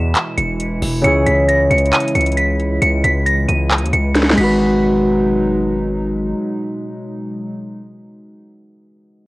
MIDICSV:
0, 0, Header, 1, 6, 480
1, 0, Start_track
1, 0, Key_signature, 5, "minor"
1, 0, Tempo, 444444
1, 1125, Time_signature, 4, 2, 24, 8
1, 10012, End_track
2, 0, Start_track
2, 0, Title_t, "Synth bell"
2, 0, Program_c, 0, 98
2, 0, Note_on_c, 0, 100, 81
2, 375, Note_off_c, 0, 100, 0
2, 404, Note_on_c, 0, 97, 78
2, 1081, Note_off_c, 0, 97, 0
2, 1126, Note_on_c, 0, 97, 114
2, 1320, Note_off_c, 0, 97, 0
2, 1365, Note_on_c, 0, 95, 86
2, 1559, Note_off_c, 0, 95, 0
2, 1604, Note_on_c, 0, 94, 81
2, 1798, Note_off_c, 0, 94, 0
2, 1844, Note_on_c, 0, 97, 82
2, 2038, Note_off_c, 0, 97, 0
2, 2083, Note_on_c, 0, 99, 84
2, 2278, Note_off_c, 0, 99, 0
2, 2325, Note_on_c, 0, 97, 86
2, 2519, Note_off_c, 0, 97, 0
2, 2563, Note_on_c, 0, 95, 92
2, 3015, Note_off_c, 0, 95, 0
2, 3044, Note_on_c, 0, 97, 106
2, 3238, Note_off_c, 0, 97, 0
2, 3283, Note_on_c, 0, 95, 90
2, 3478, Note_off_c, 0, 95, 0
2, 3523, Note_on_c, 0, 94, 94
2, 3718, Note_off_c, 0, 94, 0
2, 3764, Note_on_c, 0, 99, 78
2, 4216, Note_off_c, 0, 99, 0
2, 4245, Note_on_c, 0, 97, 81
2, 4696, Note_off_c, 0, 97, 0
2, 4725, Note_on_c, 0, 95, 85
2, 6362, Note_off_c, 0, 95, 0
2, 10012, End_track
3, 0, Start_track
3, 0, Title_t, "Harp"
3, 0, Program_c, 1, 46
3, 0, Note_on_c, 1, 52, 70
3, 0, Note_on_c, 1, 64, 73
3, 0, Note_on_c, 1, 68, 64
3, 0, Note_on_c, 1, 71, 78
3, 1076, Note_off_c, 1, 64, 0
3, 1086, Note_off_c, 1, 68, 0
3, 1095, Note_on_c, 1, 49, 68
3, 1097, Note_off_c, 1, 71, 0
3, 1116, Note_on_c, 1, 61, 66
3, 1136, Note_on_c, 1, 64, 68
3, 1157, Note_on_c, 1, 68, 84
3, 1179, Note_off_c, 1, 52, 0
3, 4665, Note_on_c, 1, 56, 85
3, 4677, Note_off_c, 1, 61, 0
3, 4688, Note_off_c, 1, 64, 0
3, 4698, Note_off_c, 1, 68, 0
3, 4706, Note_on_c, 1, 63, 81
3, 4746, Note_on_c, 1, 66, 79
3, 4779, Note_off_c, 1, 49, 0
3, 4788, Note_on_c, 1, 71, 96
3, 8099, Note_off_c, 1, 63, 0
3, 8140, Note_off_c, 1, 66, 0
3, 8181, Note_off_c, 1, 71, 0
3, 8387, Note_off_c, 1, 56, 0
3, 10012, End_track
4, 0, Start_track
4, 0, Title_t, "Analog synth pad"
4, 0, Program_c, 2, 89
4, 0, Note_on_c, 2, 47, 78
4, 0, Note_on_c, 2, 52, 70
4, 0, Note_on_c, 2, 56, 73
4, 0, Note_on_c, 2, 64, 88
4, 1087, Note_off_c, 2, 47, 0
4, 1087, Note_off_c, 2, 56, 0
4, 1125, Note_on_c, 2, 49, 79
4, 1126, Note_on_c, 2, 56, 72
4, 4683, Note_off_c, 2, 52, 0
4, 4683, Note_off_c, 2, 64, 0
4, 4689, Note_off_c, 2, 49, 0
4, 4690, Note_off_c, 2, 56, 0
4, 4724, Note_on_c, 2, 54, 75
4, 4724, Note_on_c, 2, 63, 87
4, 4725, Note_on_c, 2, 47, 80
4, 4725, Note_on_c, 2, 56, 74
4, 8118, Note_off_c, 2, 54, 0
4, 8118, Note_off_c, 2, 63, 0
4, 8119, Note_off_c, 2, 47, 0
4, 8119, Note_off_c, 2, 56, 0
4, 10012, End_track
5, 0, Start_track
5, 0, Title_t, "808-style bass"
5, 0, Program_c, 3, 38
5, 0, Note_on_c, 3, 40, 111
5, 155, Note_off_c, 3, 40, 0
5, 405, Note_on_c, 3, 28, 108
5, 866, Note_off_c, 3, 28, 0
5, 884, Note_on_c, 3, 28, 110
5, 1115, Note_off_c, 3, 28, 0
5, 1124, Note_on_c, 3, 37, 115
5, 1355, Note_off_c, 3, 37, 0
5, 1364, Note_on_c, 3, 37, 105
5, 1825, Note_off_c, 3, 37, 0
5, 1844, Note_on_c, 3, 37, 114
5, 2075, Note_off_c, 3, 37, 0
5, 2325, Note_on_c, 3, 37, 106
5, 3016, Note_off_c, 3, 37, 0
5, 3044, Note_on_c, 3, 37, 113
5, 3275, Note_off_c, 3, 37, 0
5, 3285, Note_on_c, 3, 37, 106
5, 3746, Note_off_c, 3, 37, 0
5, 3765, Note_on_c, 3, 37, 114
5, 4124, Note_on_c, 3, 39, 100
5, 4140, Note_off_c, 3, 37, 0
5, 4239, Note_off_c, 3, 39, 0
5, 4244, Note_on_c, 3, 37, 105
5, 4705, Note_off_c, 3, 37, 0
5, 4725, Note_on_c, 3, 32, 114
5, 6842, Note_off_c, 3, 32, 0
5, 10012, End_track
6, 0, Start_track
6, 0, Title_t, "Drums"
6, 165, Note_on_c, 9, 42, 75
6, 166, Note_on_c, 9, 39, 120
6, 273, Note_off_c, 9, 42, 0
6, 274, Note_off_c, 9, 39, 0
6, 406, Note_on_c, 9, 42, 80
6, 514, Note_off_c, 9, 42, 0
6, 646, Note_on_c, 9, 42, 83
6, 754, Note_off_c, 9, 42, 0
6, 886, Note_on_c, 9, 46, 92
6, 994, Note_off_c, 9, 46, 0
6, 1125, Note_on_c, 9, 42, 89
6, 1233, Note_off_c, 9, 42, 0
6, 1365, Note_on_c, 9, 42, 89
6, 1473, Note_off_c, 9, 42, 0
6, 1606, Note_on_c, 9, 42, 91
6, 1714, Note_off_c, 9, 42, 0
6, 1846, Note_on_c, 9, 42, 50
6, 1926, Note_off_c, 9, 42, 0
6, 1926, Note_on_c, 9, 42, 57
6, 2006, Note_off_c, 9, 42, 0
6, 2006, Note_on_c, 9, 42, 63
6, 2086, Note_off_c, 9, 42, 0
6, 2086, Note_on_c, 9, 39, 121
6, 2086, Note_on_c, 9, 42, 68
6, 2166, Note_off_c, 9, 42, 0
6, 2166, Note_on_c, 9, 42, 76
6, 2194, Note_off_c, 9, 39, 0
6, 2245, Note_off_c, 9, 42, 0
6, 2245, Note_on_c, 9, 42, 82
6, 2326, Note_off_c, 9, 42, 0
6, 2326, Note_on_c, 9, 42, 78
6, 2385, Note_off_c, 9, 42, 0
6, 2385, Note_on_c, 9, 42, 66
6, 2445, Note_off_c, 9, 42, 0
6, 2445, Note_on_c, 9, 42, 55
6, 2504, Note_off_c, 9, 42, 0
6, 2504, Note_on_c, 9, 42, 44
6, 2563, Note_off_c, 9, 42, 0
6, 2563, Note_on_c, 9, 42, 84
6, 2671, Note_off_c, 9, 42, 0
6, 2804, Note_on_c, 9, 42, 85
6, 2912, Note_off_c, 9, 42, 0
6, 3044, Note_on_c, 9, 42, 92
6, 3152, Note_off_c, 9, 42, 0
6, 3284, Note_on_c, 9, 42, 90
6, 3392, Note_off_c, 9, 42, 0
6, 3524, Note_on_c, 9, 42, 80
6, 3632, Note_off_c, 9, 42, 0
6, 3764, Note_on_c, 9, 42, 77
6, 3872, Note_off_c, 9, 42, 0
6, 4004, Note_on_c, 9, 39, 121
6, 4004, Note_on_c, 9, 42, 50
6, 4085, Note_off_c, 9, 42, 0
6, 4085, Note_on_c, 9, 42, 65
6, 4112, Note_off_c, 9, 39, 0
6, 4164, Note_off_c, 9, 42, 0
6, 4164, Note_on_c, 9, 42, 79
6, 4245, Note_off_c, 9, 42, 0
6, 4245, Note_on_c, 9, 42, 80
6, 4353, Note_off_c, 9, 42, 0
6, 4485, Note_on_c, 9, 38, 63
6, 4485, Note_on_c, 9, 42, 80
6, 4565, Note_off_c, 9, 38, 0
6, 4565, Note_on_c, 9, 38, 64
6, 4593, Note_off_c, 9, 42, 0
6, 4644, Note_off_c, 9, 38, 0
6, 4644, Note_on_c, 9, 38, 90
6, 4724, Note_on_c, 9, 49, 91
6, 4752, Note_off_c, 9, 38, 0
6, 4832, Note_off_c, 9, 49, 0
6, 10012, End_track
0, 0, End_of_file